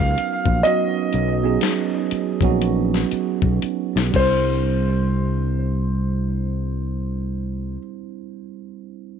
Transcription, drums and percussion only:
0.00 kick medium
0.18 closed hi-hat medium
0.46 kick medium
0.65 closed hi-hat medium
1.13 closed hi-hat soft
1.61 snare medium
1.61 closed hi-hat medium
2.11 closed hi-hat medium
2.41 kick medium
2.41 closed hi-hat soft
2.62 closed hi-hat medium
2.94 snare soft
3.11 closed hi-hat medium
3.42 kick medium
3.62 closed hi-hat medium
3.97 snare soft
4.14 kick medium
4.14 crash medium

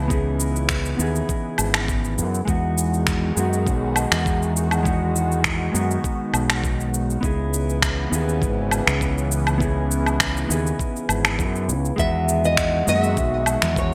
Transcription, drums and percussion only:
0.10 kick loud
0.10 shaker soft
0.40 shaker medium
0.56 shaker soft
0.69 finger snap medium
0.69 kick loud
0.69 shaker soft
0.85 shaker soft
1.00 shaker medium
1.16 shaker soft
1.29 kick loud
1.29 shaker soft
1.58 low woodblock medium
1.58 shaker medium
1.74 finger snap medium
1.74 low woodblock medium
1.74 shaker soft
1.88 kick loud
1.88 shaker soft
2.05 shaker soft
2.18 shaker medium
2.34 shaker soft
2.48 kick loud
2.48 shaker soft
2.78 shaker medium
2.94 shaker soft
3.07 finger snap medium
3.07 kick loud
3.07 shaker soft
3.37 shaker medium
3.53 shaker soft
3.67 kick loud
3.67 shaker soft
3.96 low woodblock medium
3.96 shaker medium
4.12 finger snap medium
4.12 shaker soft
4.26 kick loud
4.26 shaker soft
4.42 shaker soft
4.57 shaker medium
4.71 low woodblock medium
4.71 shaker soft
4.85 kick loud
4.85 shaker soft
5.16 shaker medium
5.32 shaker soft
5.44 finger snap medium
5.44 kick loud
5.44 shaker soft
5.75 shaker medium
5.91 shaker soft
6.04 kick medium
6.04 shaker soft
6.34 low woodblock medium
6.34 shaker medium
6.50 finger snap medium
6.50 low woodblock medium
6.50 shaker soft
6.64 kick loud
6.64 shaker soft
6.80 shaker soft
6.94 shaker medium
7.10 shaker soft
7.23 kick loud
7.23 shaker soft
7.54 shaker medium
7.70 shaker soft
7.82 finger snap medium
7.82 kick loud
7.82 shaker soft
8.13 shaker medium
8.29 shaker soft
8.42 kick medium
8.42 shaker soft
8.71 low woodblock medium
8.71 shaker medium
8.87 finger snap medium
8.87 shaker soft
9.01 kick loud
9.01 shaker soft
9.18 shaker soft
9.32 shaker medium
9.47 low woodblock medium
9.47 shaker soft
9.60 kick loud
9.60 shaker soft
9.91 shaker medium
10.06 low woodblock medium
10.06 shaker soft
10.20 finger snap medium
10.20 kick loud
10.20 shaker soft
10.37 shaker soft
10.51 shaker medium
10.67 shaker soft
10.79 kick medium
10.79 shaker soft
10.96 shaker soft
11.09 low woodblock medium
11.09 shaker medium
11.25 finger snap medium
11.25 low woodblock medium
11.25 shaker soft
11.39 kick loud
11.39 shaker soft
11.56 shaker soft
11.69 shaker medium
11.85 shaker soft
11.98 kick loud
11.98 shaker soft
12.29 shaker medium
12.44 shaker soft
12.57 finger snap medium
12.57 kick loud
12.57 shaker soft
12.87 high conga medium
12.87 shaker medium
13.03 high conga medium
13.03 shaker soft
13.17 kick loud
13.17 shaker soft
13.46 low woodblock medium
13.46 shaker medium
13.62 finger snap medium
13.62 low conga medium
13.62 shaker soft
13.76 kick loud
13.76 shaker soft

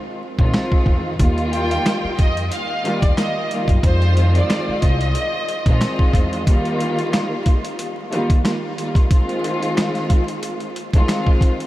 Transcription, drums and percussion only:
0.39 kick loud
0.53 cross-stick medium
0.53 snare loud
0.72 kick medium
0.86 kick medium
1.19 kick loud
1.19 closed hi-hat medium
1.38 closed hi-hat soft
1.53 closed hi-hat medium
1.71 closed hi-hat medium
1.86 cross-stick medium
1.86 snare loud
1.86 closed hi-hat medium
2.19 kick medium
2.19 closed hi-hat medium
2.37 closed hi-hat medium
2.52 closed hi-hat loud
2.85 closed hi-hat medium
3.02 kick loud
3.02 closed hi-hat medium
3.17 cross-stick medium
3.17 snare loud
3.17 closed hi-hat loud
3.51 closed hi-hat medium
3.68 kick loud
3.68 closed hi-hat medium
3.83 kick loud
3.83 closed hi-hat medium
4.02 closed hi-hat soft
4.17 closed hi-hat medium
4.35 closed hi-hat medium
4.50 cross-stick medium
4.50 snare loud
4.50 closed hi-hat medium
4.82 kick medium
4.82 closed hi-hat medium
5.01 closed hi-hat medium
5.15 closed hi-hat loud
5.49 closed hi-hat medium
5.66 kick medium
5.66 closed hi-hat medium
5.81 cross-stick medium
5.81 snare loud
5.81 closed hi-hat loud
5.99 kick medium
6.13 kick medium
6.13 closed hi-hat medium
6.33 closed hi-hat soft
6.47 kick loud
6.47 closed hi-hat loud
6.65 closed hi-hat soft
6.80 closed hi-hat medium
6.99 closed hi-hat medium
7.13 cross-stick medium
7.13 snare loud
7.13 closed hi-hat medium
7.46 kick medium
7.46 closed hi-hat medium
7.65 closed hi-hat medium
7.79 closed hi-hat loud
8.12 closed hi-hat medium
8.30 kick medium
8.30 closed hi-hat medium
8.45 cross-stick medium
8.45 snare loud
8.45 closed hi-hat loud
8.78 closed hi-hat medium
8.95 kick loud
8.95 closed hi-hat soft
9.11 kick loud
9.11 closed hi-hat medium
9.29 closed hi-hat soft
9.44 closed hi-hat medium
9.62 closed hi-hat medium
9.77 cross-stick medium
9.77 snare loud
9.77 closed hi-hat medium
9.95 snare soft
9.95 closed hi-hat soft
10.10 kick medium
10.10 closed hi-hat medium
10.28 closed hi-hat medium
10.43 closed hi-hat loud
10.60 closed hi-hat soft
10.76 closed hi-hat medium
10.94 kick medium
10.94 closed hi-hat medium
11.08 cross-stick medium
11.08 snare loud
11.08 closed hi-hat loud
11.27 kick medium
11.41 kick medium
11.41 closed hi-hat medium
11.60 closed hi-hat medium

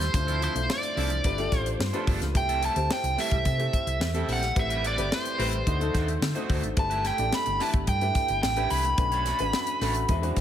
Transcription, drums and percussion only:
0.01 snare soft
0.01 closed hi-hat medium
0.14 kick loud
0.14 closed hi-hat loud
0.28 closed hi-hat medium
0.42 closed hi-hat medium
0.56 closed hi-hat medium
0.70 snare loud
0.83 closed hi-hat medium
0.97 open hi-hat medium
1.10 closed hi-hat medium
1.24 kick medium
1.24 closed hi-hat medium
1.38 closed hi-hat soft
1.52 kick medium
1.52 snare soft
1.52 closed hi-hat medium
1.66 closed hi-hat medium
1.80 snare loud
1.93 closed hi-hat soft
2.07 kick loud
2.07 open hi-hat medium
2.22 snare soft
2.22 closed hi-hat medium
2.35 kick loud
2.35 closed hi-hat medium
2.49 closed hi-hat medium
2.63 closed hi-hat medium
2.76 closed hi-hat medium
2.91 snare loud
3.04 closed hi-hat medium
3.18 snare soft
3.18 open hi-hat medium
3.31 kick medium
3.31 closed hi-hat medium
3.45 kick medium
3.45 closed hi-hat loud
3.60 closed hi-hat soft
3.73 kick medium
3.73 closed hi-hat medium
3.87 closed hi-hat medium
4.01 snare loud
4.14 closed hi-hat soft
4.29 open hi-hat medium
4.43 snare soft
4.43 closed hi-hat medium
4.56 kick loud
4.56 closed hi-hat loud
4.70 closed hi-hat medium
4.84 closed hi-hat medium
4.98 closed hi-hat medium
5.12 snare loud
5.25 closed hi-hat medium
5.40 open hi-hat medium
5.53 closed hi-hat medium
5.67 kick medium
5.67 closed hi-hat medium
5.81 closed hi-hat soft
5.95 kick medium
5.95 snare soft
5.95 closed hi-hat medium
6.08 closed hi-hat medium
6.22 snare loud
6.35 closed hi-hat soft
6.50 kick loud
6.50 open hi-hat medium
6.64 closed hi-hat medium
6.77 kick loud
6.77 closed hi-hat loud
6.91 closed hi-hat medium
7.04 snare soft
7.04 closed hi-hat medium
7.18 closed hi-hat medium
7.33 snare loud
7.46 closed hi-hat medium
7.60 snare soft
7.60 open hi-hat medium
7.73 kick loud
7.73 closed hi-hat medium
7.87 kick medium
7.87 closed hi-hat loud
8.01 closed hi-hat soft
8.15 kick medium
8.15 snare soft
8.15 closed hi-hat medium
8.28 closed hi-hat medium
8.43 snare loud
8.56 closed hi-hat soft
8.70 open hi-hat medium
8.85 closed hi-hat medium
8.98 kick loud
8.98 closed hi-hat loud
9.12 closed hi-hat medium
9.26 snare soft
9.26 closed hi-hat medium
9.39 closed hi-hat medium
9.53 snare loud
9.67 closed hi-hat medium
9.81 snare soft
9.81 open hi-hat medium
9.95 closed hi-hat medium
10.09 kick medium
10.09 closed hi-hat medium
10.23 closed hi-hat soft
10.36 kick medium
10.36 snare soft
10.36 closed hi-hat medium

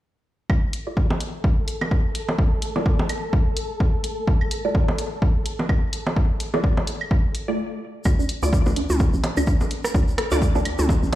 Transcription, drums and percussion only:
0.50 kick loud
0.50 claves medium
0.73 closed hi-hat medium
0.97 kick loud
1.10 low bongo medium
1.20 closed hi-hat medium
1.44 kick loud
1.68 closed hi-hat medium
1.81 low bongo soft
1.81 claves medium
1.91 kick loud
2.15 closed hi-hat medium
2.29 low bongo medium
2.39 kick loud
2.62 closed hi-hat medium
2.76 low bongo medium
2.86 kick loud
2.99 low bongo medium
3.09 closed hi-hat medium
3.09 claves medium
3.33 kick loud
3.57 closed hi-hat medium
3.80 kick loud
4.04 closed hi-hat medium
4.27 kick loud
4.41 claves medium
4.51 closed hi-hat medium
4.75 kick loud
4.88 low bongo medium
4.98 closed hi-hat medium
5.22 kick loud
5.46 closed hi-hat medium
5.59 low bongo medium
5.69 kick loud
5.69 claves medium
5.93 closed hi-hat medium
6.07 low bongo medium
6.16 kick loud
6.40 closed hi-hat medium
6.54 low bongo medium
6.64 kick loud
6.77 low bongo medium
6.87 closed hi-hat medium
7.01 claves medium
7.11 kick loud
7.35 closed hi-hat medium
8.05 kick loud
8.05 claves medium
8.05 shaker medium
8.19 shaker soft
8.29 closed hi-hat medium
8.43 shaker medium
8.53 kick loud
8.53 shaker medium
8.66 low bongo medium
8.66 shaker soft
8.76 closed hi-hat medium
8.90 mid tom medium
8.90 shaker medium
8.99 kick loud
8.99 shaker medium
9.13 shaker soft
9.24 closed hi-hat medium
9.24 low bongo medium
9.37 claves medium
9.37 shaker medium
9.47 kick loud
9.47 shaker medium
9.61 low bongo medium
9.61 shaker soft
9.71 closed hi-hat medium
9.84 cross-stick medium
9.84 shaker medium
9.94 kick loud
9.94 shaker medium
10.08 shaker soft
10.18 cross-stick medium
10.18 closed hi-hat medium
10.31 mid tom medium
10.31 shaker medium
10.42 kick loud
10.42 shaker medium
10.55 low bongo medium
10.55 shaker soft
10.65 closed hi-hat medium
10.65 claves medium
10.79 mid tom medium
10.79 shaker medium
10.89 kick loud
10.89 low bongo medium
10.89 shaker medium
11.03 shaker soft

